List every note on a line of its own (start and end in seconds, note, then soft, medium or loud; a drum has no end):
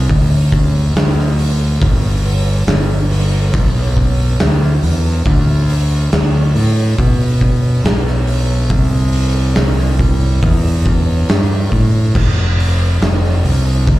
0.09 0.91 D2 loud
0.09 kick loud
0.09 open hi-hat loud
0.52 kick medium
0.52 open hi-hat medium
0.96 1.77 D2 loud
0.96 snare loud
0.96 open hi-hat loud
1.19 snare soft
1.39 open hi-hat medium
1.82 2.63 G1 loud
1.82 kick loud
1.82 open hi-hat loud
2.25 open hi-hat medium
2.67 3.49 G1 medium
2.67 snare loud
2.67 open hi-hat loud
3.11 open hi-hat medium
3.54 4.36 B1 loud
3.54 kick loud
3.54 open hi-hat loud
3.97 kick medium
3.97 open hi-hat medium
4.39 4.81 D2 loud
4.39 snare loud
4.39 open hi-hat medium
4.62 snare soft
4.83 5.24 E2 medium
4.83 open hi-hat medium
5.26 6.08 D2 loud
5.26 kick loud
5.26 open hi-hat medium
5.69 open hi-hat medium
6.12 6.53 D2 medium
6.12 snare loud
6.12 open hi-hat medium
6.55 6.96 A2 loud
6.55 open hi-hat medium
6.98 7.80 B2 loud
6.98 kick loud
6.98 open hi-hat medium
7.41 kick medium
7.41 open hi-hat medium
7.84 8.70 B1 medium
7.84 snare loud
7.84 open hi-hat loud
8.07 snare soft
8.27 open hi-hat medium
8.69 9.52 C2 loud
8.69 kick loud
8.69 open hi-hat medium
9.12 open hi-hat medium
9.55 10.39 C2 medium
9.55 snare loud
9.55 open hi-hat medium
9.78 snare soft
9.99 kick medium
9.99 open hi-hat medium
10.42 11.25 E2 loud
10.42 kick loud
10.42 open hi-hat loud
10.85 kick medium
10.85 open hi-hat medium
11.29 11.70 G2 medium
11.29 snare loud
11.29 open hi-hat loud
11.72 12.13 A2 medium
11.72 kick medium
11.72 open hi-hat medium
12.15 12.97 F1 loud
12.15 kick loud
12.15 crash loud
12.59 open hi-hat medium
13.01 13.42 F1 medium
13.01 snare loud
13.01 open hi-hat medium
13.25 snare soft
13.44 13.85 C2 loud
13.44 open hi-hat medium
13.87 13.99 D2 loud
13.87 kick loud
13.87 open hi-hat medium